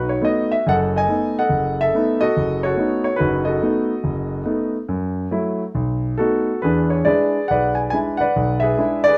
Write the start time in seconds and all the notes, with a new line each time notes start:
Already playing: B1 D#4 F#4
0.09 C#5
0.21 A3 B3 D#4 D#5
0.52 E5
0.67 F#1 F#2 A4 D#5 F#5
0.96 D#5 G#5
1.09 A3 B3 D#4
1.39 A4 D#5 F#5
1.49 F#1
1.81 A4 E5
1.95 A3 B3 D#4
2.21 F#4 A4 D#5
2.37 F#1
2.63 F#4 A4 C#5
2.77 A3 B3 D#4
3.04 C#5
3.16 D#4 F#4 B4
3.20 F#1
3.45 F#4 A4 D#5
3.62 A3 B3 D#4
4.04 F#1
4.45 A3 B3 D#4
4.89 F#2
5.31 F#3 A3 E4
5.75 B1
6.18 A3 B3 D#4 F#4 A4
6.62 E2 D4 G#4 B4
6.90 C#5
7.05 G#3 D4 E4 G#4 B4 D5
7.48 B1 B4 D5 F#5
7.75 G#5
7.90 G#3 D4 E4 G#5
8.17 B4 D5 F#5
8.36 B1
8.60 G#4 B4 E5
8.78 G#3 D4 E4
9.04 D5
9.08 G#4 B4